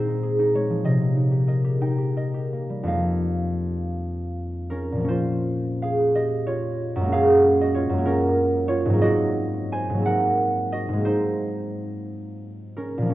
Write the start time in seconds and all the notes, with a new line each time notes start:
Already playing: A#2 G#3 C4 F4 G#4 A#4 C5 F5 G5 G#5 A#5
0.08 D#4
0.23 G#4
0.39 D#4
0.55 G#3 C#5
0.70 F3
0.84 C3 D#5
1.01 A#3
1.16 D#4
1.31 G4
1.47 A#4 D#5
1.64 G4
1.81 D#4 G5
1.98 G4
2.17 A#4 D#5
2.34 G4
2.53 A#3
2.69 G3
2.83 F2 F3 A#3 D#4
2.88 F5
4.70 C#4 A#4
4.92 A#2 F3
5.01 A#3 C#4
5.08 F4 C5
5.82 G#4 F5
6.15 G4 D#5
6.47 F4 C#5
6.96 F#2
7.00 G#3 A#3
7.08 C#4
7.12 G#4 F5
7.61 F#4 D#5
7.75 F4 C#5
7.89 F#2 G#3
7.98 A#3
8.06 C#4 A#4
8.68 F4 C#5
8.85 G#2
8.90 F#3 A#3
8.98 C4 D#5
9.03 F#4
9.72 C5 G#5
9.89 G#2
9.94 F#3 A#3
10.02 C4 F#5
10.07 A#4
10.72 F#4 D#5
10.89 G#2
10.93 G#3 A#3
11.01 C4 C5
11.06 D#4
12.77 C#4 A#4
12.98 A#2 F3
13.06 A#3 C#4